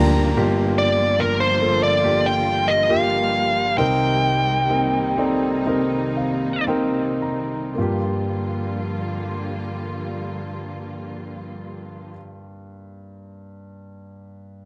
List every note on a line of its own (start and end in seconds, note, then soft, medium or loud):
0.00 0.34 D2 loud
0.00 0.33 D3 medium
0.00 0.87 D3 medium
0.00 0.33 F3 medium
0.00 0.37 F3 soft
0.00 0.33 G3 medium
0.00 0.33 A#3 medium
0.00 0.35 A#3 loud
0.00 0.37 A#3 medium
0.00 0.37 D4 medium
0.00 0.38 D4 medium
0.00 0.33 F4 medium
0.00 0.36 F4 medium
0.00 0.32 G4 loud
0.00 0.36 G4 medium
0.00 0.38 A#4 medium
0.00 0.37 A#5 medium
0.35 3.73 G1 medium
0.35 3.73 G2 medium
0.35 3.74 D3 soft
0.35 3.74 F3 soft
0.35 7.74 G3 medium
0.35 1.14 A#3 medium
0.35 7.73 A#3 soft
0.35 1.15 F4 medium
0.35 3.74 F4 medium
0.35 1.15 G4 medium
0.78 1.21 D5 medium
1.19 1.58 A#3 soft
1.19 1.59 F4 medium
1.19 1.39 A#4 medium
1.19 1.59 A#4 medium
1.40 1.83 C5 medium
1.61 2.01 A#3 soft
1.61 2.01 F4 soft
1.61 2.01 A4 medium
1.83 2.26 D5 medium
2.02 2.84 A#3 medium
2.02 2.85 F4 soft
2.02 2.85 G4 medium
2.26 2.69 G5 medium
2.68 2.90 D#5 medium
2.89 3.73 A#3 medium
2.89 3.73 F4 medium
2.89 3.74 G4 medium
2.89 3.78 F5 medium
3.77 7.74 C2 soft
3.77 7.73 C3 medium
3.77 7.74 C3 soft
3.77 7.73 D#3 soft
3.77 4.65 C4 medium
3.77 7.73 D#4 medium
3.77 4.65 D#4 medium
3.77 4.66 A#4 medium
3.77 6.65 G5 medium
4.69 5.15 C4 medium
4.69 5.15 D#4 soft
4.69 5.15 A#4 soft
5.17 5.64 C4 medium
5.17 5.64 D#4 medium
5.17 5.65 A4 medium
5.17 5.63 D5 medium
5.66 6.63 C4 medium
5.66 6.63 D#4 medium
5.66 6.64 A#4 medium
5.66 6.13 D#5 medium
6.17 6.65 F5 soft
6.67 7.71 C4 medium
6.67 7.71 D#4 medium
6.67 7.72 A#4 medium
6.67 7.18 G5 medium
7.22 7.74 A#5 soft
7.75 12.13 G2 soft
7.75 12.14 D3 soft
7.75 12.13 F3 soft
7.75 12.10 A#3 medium
7.75 12.13 A#3 soft
7.75 12.13 F4 soft
7.75 12.13 F4 medium
7.79 12.14 G3 soft
7.79 12.16 G4 medium